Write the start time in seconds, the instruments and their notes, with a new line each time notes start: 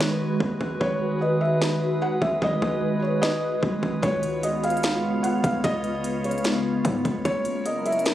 Already playing: 808-style bass G#1, ambient pad D#3 G#3 F#4 B4, synth texture G#3 F#4 B4, felt piano C#5
0.01 snare
0.40 808-style bass D#2, kick
0.61 808-style bass G#1, kick
0.80 808-style bass G#1, synth texture G#4, felt piano C#5, kick
1.21 felt piano D#5
1.41 felt piano E5
1.62 snare
2.02 felt piano F#5
2.21 808-style bass G#1, felt piano E5, kick
2.42 808-style bass G#1, felt piano D#5, kick
2.62 808-style bass G#1, kick
3.02 felt piano C#5
3.22 felt piano D#5, snare
3.63 808-style bass B1, kick
3.83 808-style bass G#1, kick
4.02 808-style bass C#2, ambient pad C#3 G#3 B3 F4, synth texture B3 F4 C#5, felt piano C#5, kick, closed hi-hat
4.23 closed hi-hat
4.43 felt piano D#5, closed hi-hat
4.64 felt piano F5, closed hi-hat
4.70 closed hi-hat
4.77 closed hi-hat
4.83 snare, closed hi-hat
5.23 felt piano F#5, closed hi-hat
5.44 808-style bass C#2, felt piano F5, kick, closed hi-hat
5.64 808-style bass C#2, felt piano D#5, kick, closed hi-hat
5.84 closed hi-hat
6.04 closed hi-hat
6.24 felt piano C#5, closed hi-hat
6.31 closed hi-hat
6.38 closed hi-hat
6.44 snare, closed hi-hat
6.85 808-style bass G#2, kick, closed hi-hat
7.05 808-style bass C#2, kick, closed hi-hat
7.25 808-style bass F#1, ambient pad F#3 C#4 E4 A#4, synth texture F#3 E4 A#4, felt piano C#5, kick, closed hi-hat
7.45 closed hi-hat
7.66 felt piano D#5, closed hi-hat
7.86 felt piano E5, closed hi-hat
7.92 closed hi-hat
7.99 closed hi-hat
8.06 snare, closed hi-hat